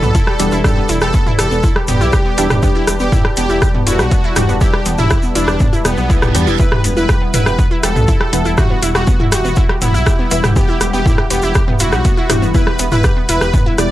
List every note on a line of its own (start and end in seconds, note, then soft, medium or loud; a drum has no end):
0.00 0.12 B1 medium
0.00 13.91 G3 medium
0.00 0.10 B3 medium
0.00 0.54 A4 loud
0.00 6.55 B4 medium
0.00 6.55 D5 medium
0.00 2.59 B5 medium
0.00 mid tom medium
0.00 shaker soft
0.15 0.23 E4 loud
0.15 kick loud
0.15 closed hi-hat medium
0.15 shaker medium
0.27 0.32 G4 medium
0.27 cross-stick soft
0.39 0.49 E1 medium
0.39 0.61 G3 loud
0.39 0.47 B3 medium
0.39 0.61 D4 medium
0.39 0.61 G4 loud
0.39 closed hi-hat loud
0.39 shaker medium
0.51 0.62 E1 medium
0.51 0.60 E4 loud
0.51 shaker soft
0.64 2.35 G3 medium
0.64 2.35 D4 medium
0.64 2.35 G4 loud
0.64 0.69 G4 medium
0.64 0.86 A4 loud
0.64 kick loud
0.64 cross-stick medium
0.64 mid tom medium
0.64 shaker soft
0.77 0.84 B3 medium
0.89 0.99 E1 medium
0.89 0.97 E4 loud
0.89 closed hi-hat loud
0.89 shaker medium
1.01 1.11 E1 medium
1.01 1.06 G4 medium
1.01 1.23 A4 loud
1.01 cross-stick medium
1.01 shaker soft
1.13 1.22 B3 medium
1.13 kick loud
1.13 shaker medium
1.26 1.34 E4 loud
1.26 mid tom medium
1.39 1.48 E1 medium
1.39 1.43 G4 medium
1.39 1.68 A4 loud
1.39 cross-stick medium
1.39 closed hi-hat loud
1.39 shaker medium
1.51 1.61 E1 medium
1.51 1.59 B3 medium
1.51 shaker soft
1.63 1.71 E4 loud
1.63 kick loud
1.63 shaker medium
1.76 1.81 G4 medium
1.76 cross-stick medium
1.88 2.02 E1 loud
1.88 1.96 B3 medium
1.88 2.53 G4 loud
1.88 closed hi-hat loud
1.88 mid tom medium
1.88 shaker medium
2.01 2.10 B1 medium
2.01 2.08 E4 loud
2.01 shaker soft
2.13 2.18 G4 medium
2.13 kick loud
2.13 cross-stick medium
2.13 shaker soft
2.26 2.33 B3 medium
2.38 2.48 E1 loud
2.38 2.60 G3 loud
2.38 2.60 D4 medium
2.38 2.46 E4 loud
2.38 2.60 G4 loud
2.38 closed hi-hat loud
2.38 shaker medium
2.50 2.60 E1 medium
2.50 2.55 G4 medium
2.50 cross-stick medium
2.50 mid tom medium
2.50 shaker soft
2.63 4.33 G3 medium
2.63 2.70 B3 medium
2.63 4.33 D4 medium
2.63 2.84 G4 loud
2.63 4.33 B4 loud
2.63 6.55 A5 medium
2.63 kick loud
2.63 shaker soft
2.75 2.83 E4 loud
2.87 2.97 E1 medium
2.87 2.92 G4 medium
2.87 cross-stick medium
2.87 closed hi-hat loud
2.87 shaker medium
3.00 3.10 E1 medium
3.00 3.08 B3 medium
3.00 3.22 G4 loud
3.00 shaker soft
3.12 3.20 E4 loud
3.12 kick loud
3.12 mid tom medium
3.12 shaker medium
3.25 3.29 G4 medium
3.25 cross-stick medium
3.37 3.47 E1 medium
3.37 3.45 B3 medium
3.37 3.66 G4 loud
3.37 closed hi-hat loud
3.37 shaker medium
3.50 3.59 E1 medium
3.50 3.57 E4 loud
3.50 shaker soft
3.62 3.66 G4 medium
3.62 kick loud
3.62 cross-stick medium
3.62 shaker soft
3.74 3.82 B3 medium
3.74 mid tom medium
3.87 4.01 E1 loud
3.87 3.94 E4 loud
3.87 4.51 F#4 loud
3.87 closed hi-hat loud
3.87 shaker medium
3.99 4.09 B1 medium
3.99 4.04 G4 medium
3.99 cross-stick medium
3.99 shaker soft
4.11 4.19 B3 medium
4.11 kick loud
4.11 closed hi-hat medium
4.11 shaker soft
4.24 4.32 E4 loud
4.36 4.46 E1 medium
4.36 4.58 G3 loud
4.36 4.58 D4 medium
4.36 4.58 G4 loud
4.36 4.41 G4 medium
4.36 cross-stick medium
4.36 closed hi-hat loud
4.36 mid tom medium
4.36 shaker medium
4.49 4.58 E1 medium
4.49 4.56 B3 medium
4.49 shaker soft
4.61 6.32 G3 medium
4.61 6.32 D4 medium
4.61 4.69 E4 loud
4.61 4.83 G4 loud
4.61 6.32 G4 loud
4.61 kick loud
4.61 shaker soft
4.73 4.78 G4 medium
4.73 cross-stick medium
4.86 4.95 E1 medium
4.86 4.94 B3 medium
4.86 closed hi-hat loud
4.86 shaker medium
4.98 5.08 E1 medium
4.98 5.20 E4 loud
4.98 5.06 E4 loud
4.98 mid tom medium
4.98 shaker soft
5.10 5.15 G4 medium
5.10 kick loud
5.10 cross-stick medium
5.10 shaker soft
5.22 5.31 B3 medium
5.22 shaker soft
5.35 5.45 E1 medium
5.35 5.64 D4 loud
5.35 5.43 E4 loud
5.35 closed hi-hat loud
5.35 shaker medium
5.47 5.57 E1 medium
5.47 5.52 G4 medium
5.47 cross-stick medium
5.47 shaker soft
5.60 5.68 B3 medium
5.60 kick loud
5.60 mid tom medium
5.60 reverse cymbal medium
5.60 shaker soft
5.73 5.80 E4 loud
5.73 shaker soft
5.85 5.95 E1 loud
5.85 6.50 B3 loud
5.85 5.90 G4 medium
5.85 cross-stick medium
5.85 closed hi-hat loud
5.85 shaker medium
5.97 6.36 B1 medium
5.97 6.05 B3 medium
5.97 shaker soft
6.10 6.18 E4 loud
6.10 kick loud
6.10 shaker soft
6.22 6.27 G4 medium
6.22 cross-stick medium
6.22 mid tom medium
6.22 shaker soft
6.35 6.49 E2 medium
6.35 6.56 G3 medium
6.35 6.42 B3 medium
6.35 6.56 D4 medium
6.35 6.56 G4 loud
6.35 closed hi-hat loud
6.35 shaker medium
6.47 6.57 E1 medium
6.47 6.55 E4 loud
6.47 shaker soft
6.59 8.30 E3 medium
6.59 8.30 B3 medium
6.59 8.30 E4 loud
6.59 6.67 E4 loud
6.59 6.81 B4 loud
6.59 13.91 E5 medium
6.59 13.91 F#5 medium
6.59 13.91 B5 medium
6.59 kick loud
6.59 shaker medium
6.72 6.76 G4 medium
6.72 cross-stick medium
6.72 mid tom loud
6.84 6.94 E1 loud
6.84 6.92 B3 medium
6.84 closed hi-hat loud
6.84 shaker loud
6.97 7.06 E1 medium
6.97 7.04 E4 loud
6.97 7.18 B4 loud
6.97 shaker soft
7.09 7.14 G4 medium
7.09 kick loud
7.09 cross-stick medium
7.09 shaker medium
7.21 7.29 B3 medium
7.34 7.43 E1 medium
7.34 7.42 E4 loud
7.34 7.63 B4 loud
7.34 closed hi-hat loud
7.34 mid tom medium
7.34 shaker medium
7.46 7.56 E1 medium
7.46 7.51 G4 medium
7.46 cross-stick medium
7.46 shaker soft
7.59 7.66 B3 medium
7.59 kick loud
7.59 shaker medium
7.71 7.79 E4 loud
7.83 7.97 E1 loud
7.83 7.88 G4 medium
7.83 8.48 A4 loud
7.83 cross-stick medium
7.83 closed hi-hat loud
7.83 shaker medium
7.96 8.05 B1 medium
7.96 8.03 B3 medium
7.96 mid tom loud
7.96 shaker soft
8.08 8.16 E4 loud
8.08 kick loud
8.08 closed hi-hat medium
8.08 shaker medium
8.21 8.25 G4 medium
8.21 cross-stick medium
8.33 8.43 E1 medium
8.33 8.55 E3 loud
8.33 8.41 B3 medium
8.33 8.55 B3 medium
8.33 8.55 E4 loud
8.33 closed hi-hat loud
8.33 shaker loud
8.45 8.55 E1 medium
8.45 8.53 E4 loud
8.45 shaker soft
8.58 10.28 E3 medium
8.58 10.28 B3 medium
8.58 10.28 E4 loud
8.58 8.79 F#4 loud
8.58 8.62 G4 medium
8.58 kick loud
8.58 cross-stick medium
8.58 mid tom loud
8.58 shaker medium
8.70 8.78 B3 medium
8.82 8.92 E1 medium
8.82 8.90 E4 loud
8.82 closed hi-hat loud
8.82 shaker loud
8.95 9.05 E1 medium
8.95 9.17 F#4 loud
8.95 9.00 G4 medium
8.95 cross-stick medium
8.95 shaker soft
9.07 9.15 B3 medium
9.07 kick loud
9.07 shaker medium
9.20 9.27 E4 loud
9.20 mid tom loud
9.32 9.42 E1 medium
9.32 9.61 F#4 loud
9.32 9.37 G4 medium
9.32 cross-stick medium
9.32 closed hi-hat loud
9.32 shaker loud
9.45 9.54 E1 medium
9.45 9.52 B3 medium
9.45 shaker soft
9.56 9.65 E4 loud
9.56 kick loud
9.56 shaker medium
9.69 9.74 G4 medium
9.69 cross-stick medium
9.82 9.96 E1 loud
9.82 9.89 B3 medium
9.82 10.46 E4 loud
9.82 closed hi-hat loud
9.82 mid tom medium
9.82 shaker medium
9.94 10.04 B1 medium
9.94 10.02 E4 loud
9.94 shaker soft
10.06 10.11 G4 medium
10.06 kick loud
10.06 cross-stick medium
10.06 shaker medium
10.19 10.27 B3 medium
10.31 10.41 E1 medium
10.31 10.53 E3 loud
10.31 10.53 B3 medium
10.31 10.39 E4 loud
10.31 10.53 E4 loud
10.31 closed hi-hat loud
10.31 shaker loud
10.44 10.53 E1 medium
10.44 10.48 G4 medium
10.44 cross-stick medium
10.44 mid tom loud
10.44 shaker soft
10.56 12.27 E3 medium
10.56 12.27 B3 medium
10.56 10.64 B3 medium
10.56 12.27 E4 loud
10.56 10.78 G4 loud
10.56 kick loud
10.56 shaker medium
10.69 10.76 E4 loud
10.81 10.91 E1 medium
10.81 10.85 G4 medium
10.81 cross-stick medium
10.81 closed hi-hat loud
10.81 shaker loud
10.93 11.03 E1 medium
10.93 11.01 B3 medium
10.93 11.15 G4 loud
10.93 shaker soft
11.06 11.13 E4 loud
11.06 kick loud
11.06 mid tom loud
11.06 shaker medium
11.18 11.23 G4 medium
11.18 cross-stick medium
11.30 11.40 E1 medium
11.30 11.38 B3 medium
11.30 11.59 G4 loud
11.30 closed hi-hat loud
11.30 shaker loud
11.42 11.53 E1 medium
11.42 11.51 E4 loud
11.42 shaker soft
11.55 11.60 G4 medium
11.55 kick loud
11.55 cross-stick medium
11.55 shaker medium
11.68 11.75 B3 medium
11.68 mid tom medium
11.79 11.94 E1 loud
11.79 11.88 E4 loud
11.79 12.45 F#4 loud
11.79 closed hi-hat loud
11.79 shaker loud
11.92 12.02 B1 medium
11.92 11.97 G4 medium
11.92 cross-stick medium
11.92 shaker soft
12.05 12.13 B3 medium
12.05 kick loud
12.05 closed hi-hat medium
12.05 shaker medium
12.17 12.25 E4 loud
12.30 12.39 E1 medium
12.30 12.51 E3 loud
12.30 12.51 B3 medium
12.30 12.51 E4 loud
12.30 12.34 G4 medium
12.30 cross-stick soft
12.30 closed hi-hat loud
12.30 mid tom loud
12.30 shaker medium
12.42 12.52 E1 medium
12.42 12.50 B3 medium
12.42 shaker soft
12.54 13.76 E3 medium
12.54 13.76 B3 medium
12.54 13.76 E4 loud
12.54 12.62 E4 loud
12.54 12.76 B4 loud
12.54 kick loud
12.54 shaker medium
12.67 12.72 G4 medium
12.67 cross-stick medium
12.79 12.89 E1 medium
12.79 12.87 B3 medium
12.79 closed hi-hat loud
12.79 shaker medium
12.92 13.01 E1 medium
12.92 12.99 E4 loud
12.92 13.13 B4 loud
12.92 mid tom medium
12.92 shaker soft
13.04 13.09 G4 medium
13.04 kick loud
13.04 cross-stick medium
13.04 shaker medium
13.17 13.24 B3 medium
13.29 13.38 E1 medium
13.29 13.37 E4 loud
13.29 13.58 B4 loud
13.29 closed hi-hat loud
13.29 shaker medium
13.41 13.51 E1 medium
13.41 13.46 G4 medium
13.41 cross-stick soft
13.41 shaker soft
13.54 13.61 B3 medium
13.54 kick loud
13.54 mid tom medium
13.54 shaker medium
13.66 13.74 E4 loud
13.78 13.88 E1 loud
13.78 13.91 E3 medium
13.78 13.91 B3 medium
13.78 13.91 E4 loud
13.78 13.83 G4 medium
13.78 13.91 D5 loud
13.78 cross-stick soft
13.78 closed hi-hat loud
13.78 shaker medium